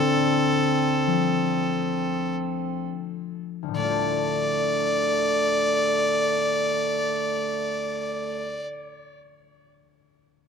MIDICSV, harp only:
0, 0, Header, 1, 2, 480
1, 0, Start_track
1, 0, Key_signature, -1, "minor"
1, 0, Tempo, 500000
1, 10061, End_track
2, 0, Start_track
2, 0, Title_t, "Harp"
2, 0, Program_c, 0, 46
2, 0, Note_on_c, 0, 38, 57
2, 0, Note_on_c, 0, 50, 44
2, 1027, Note_on_c, 0, 53, 48
2, 2725, Note_off_c, 0, 38, 0
2, 3481, Note_on_c, 0, 38, 41
2, 3533, Note_on_c, 0, 45, 39
2, 3572, Note_off_c, 0, 50, 0
2, 3583, Note_on_c, 0, 50, 41
2, 3632, Note_on_c, 0, 57, 39
2, 3650, Note_off_c, 0, 53, 0
2, 3681, Note_on_c, 0, 65, 37
2, 3731, Note_on_c, 0, 72, 45
2, 8183, Note_off_c, 0, 38, 0
2, 8235, Note_off_c, 0, 45, 0
2, 8285, Note_off_c, 0, 50, 0
2, 8334, Note_off_c, 0, 57, 0
2, 8383, Note_off_c, 0, 65, 0
2, 8433, Note_off_c, 0, 72, 0
2, 10061, End_track
0, 0, End_of_file